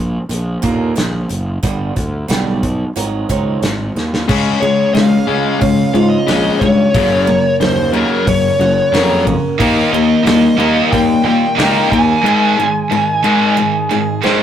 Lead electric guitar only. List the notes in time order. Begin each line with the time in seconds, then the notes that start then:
4.61 C#5
4.93 F5
5.60 F5
6.10 D#5
6.59 C#5
7.61 C5
7.94 A#4
8.28 C#5
9.93 D#5
10.92 G5
11.25 G5
11.92 G#5